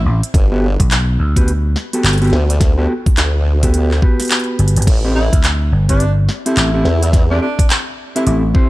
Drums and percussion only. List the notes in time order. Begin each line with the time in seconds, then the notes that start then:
0.23 closed hi-hat
0.34 kick, closed hi-hat
0.80 kick, closed hi-hat
0.91 clap, closed hi-hat
1.36 kick, closed hi-hat
1.48 closed hi-hat
1.76 snare
1.93 closed hi-hat
2.05 clap, closed hi-hat
2.09 closed hi-hat
2.13 closed hi-hat
2.18 closed hi-hat
2.22 closed hi-hat
2.24 closed hi-hat
2.27 closed hi-hat
2.30 snare, closed hi-hat
2.50 closed hi-hat
2.61 kick, snare, closed hi-hat
3.06 kick, closed hi-hat
3.17 clap, closed hi-hat
3.63 kick, closed hi-hat
3.74 closed hi-hat
3.91 clap
4.02 kick
4.20 snare, closed hi-hat
4.22 closed hi-hat
4.25 closed hi-hat
4.28 clap, closed hi-hat
4.31 closed hi-hat
4.35 closed hi-hat
4.39 closed hi-hat
4.44 closed hi-hat
4.59 closed hi-hat
4.68 closed hi-hat
4.76 closed hi-hat
4.82 closed hi-hat
4.87 kick, closed hi-hat, crash
5.33 kick, closed hi-hat
5.44 clap, closed hi-hat
5.89 kick, closed hi-hat
6.00 closed hi-hat
6.29 snare
6.46 closed hi-hat
6.57 clap, closed hi-hat
6.85 snare
7.03 closed hi-hat
7.13 kick, snare, closed hi-hat
7.59 kick, closed hi-hat
7.70 clap, closed hi-hat
8.16 closed hi-hat
8.27 closed hi-hat
8.55 kick